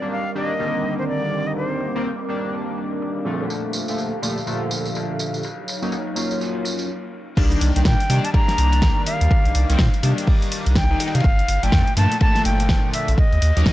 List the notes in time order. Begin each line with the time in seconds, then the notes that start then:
Already playing: G3 C4 A#4 D5 D6
0.02 D#3 G3 A#3 D4
0.11 F5, ride
0.35 D#3 G3 A#3 D4 D#5, ride
0.59 D3 D#3 G3 A#3, ride
0.84 ride
0.98 C5, ride
1.08 D5, ride
1.32 ride
1.47 D#5
1.56 C5, ride
1.80 ride
1.95 D#3 G3 A#3 C4
2.05 ride
2.19 ride
2.29 D#3 G3 A#3 D4, ride
2.43 snare
2.53 open hi-hat
2.68 ride
2.78 ride
2.92 ride
3.02 ride
3.16 snare
3.25 A#2 D3 F3 A3, snare, ride
3.33 snare, ride
3.40 snare, ride
3.45 snare, ride
3.50 G4 A4 F5, ride, tambourine
3.73 ride, tambourine
3.88 A#2 D3 F3 A3, tambourine
3.98 ride, tambourine
4.22 A#2 D3 F3 A3, ride, tambourine
4.38 tambourine
4.46 A#2 D3 F3 A3, ride, tambourine
4.71 ride, tambourine
4.85 ride, tambourine
4.95 ride, tambourine
5.19 ride, tambourine
5.34 tambourine
5.43 F#3 D#4 C#5, ride, tambourine
5.68 ride, tambourine
5.82 F#3 A#3 C#4 D#4, tambourine
5.92 ride, tambourine
6.07 ride
6.16 F#3 A#3 C#4 F4, ride, tambourine
6.31 snare, tambourine
6.41 open hi-hat, tambourine
6.55 ride
6.65 ride, tambourine
6.79 ride, tambourine
7.37 C2 D#3 G3 A#3 D4, kick, crash, ride
7.52 closed hi-hat
7.61 C2, open hi-hat, ride
7.76 C2 D#3 G3 A#3 D4 G5, closed hi-hat
7.85 A#2 G5, kick, snare, ride
8.00 closed hi-hat
8.10 C3 D#3 G3 A#3 D4, open hi-hat, ride
8.25 A5, closed hi-hat
8.33 D#3 G3 A#3 D4 A#5, kick, ride
8.48 snare, closed hi-hat
8.58 C2, open hi-hat, ride
8.72 closed hi-hat, ride
8.82 kick, snare, ride
9.06 F5, open hi-hat, ride
9.21 D#2, closed hi-hat
9.31 kick, ride
9.45 A#1, closed hi-hat
9.55 C2, open hi-hat, ride
9.69 C2 D#3 G3 A#3 C4, closed hi-hat
9.79 A#2, kick, snare, ride
9.94 closed hi-hat, ride
10.03 C3 D#3 G3 A#3 D4, open hi-hat, ride
10.18 snare, closed hi-hat
10.27 kick, open hi-hat
10.42 closed hi-hat, ride
10.52 open hi-hat, ride
10.66 C2, closed hi-hat, ride
10.75 G5, kick, snare, ride
10.90 D#3 G3 A#3 D#4, snare
10.99 snare, open hi-hat, ride
11.06 G5, snare, ride
11.14 C3 F5, snare, closed hi-hat, ride
11.20 snare, ride
11.24 G1, kick, ride
11.39 closed hi-hat
11.48 G1, open hi-hat, ride
11.63 G1 A#2 D3 F3 A3 G5, closed hi-hat
11.72 F2, kick, snare, ride
11.87 closed hi-hat
11.96 G2 A#2 D3 F3 A3 A5, open hi-hat, ride
12.12 closed hi-hat
12.20 A#2 D3 F3 A3 A5, kick, ride
12.35 snare, closed hi-hat
12.45 G1 G5, open hi-hat, ride
12.60 closed hi-hat, ride
12.69 kick, snare, ride
12.94 E5, open hi-hat, ride
13.08 A#1, closed hi-hat
13.18 D#5, kick, ride
13.33 D#2, closed hi-hat
13.42 D#2, open hi-hat, ride
13.56 D#2 F#3 A#3 C#4 D#4, closed hi-hat
13.66 C#2, kick, snare, ride